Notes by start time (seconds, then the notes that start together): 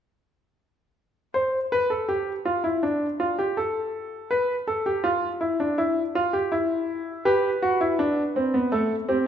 1.34 C5
1.72 B4
1.90 A4
2.09 G4
2.45 F4
2.64 E4
2.83 D4
3.20 F4
3.39 G4
3.57 A4
4.31 B4
4.67 A4
4.86 G4
5.04 F4
5.41 E4
5.60 D4
5.78 E4
6.15 F4
6.33 G4
6.52 E4
7.25 G4 B4
7.62 F#4
7.81 E4
7.99 D4
8.36 C4
8.54 B3
8.72 A3 A4
9.09 C4 G4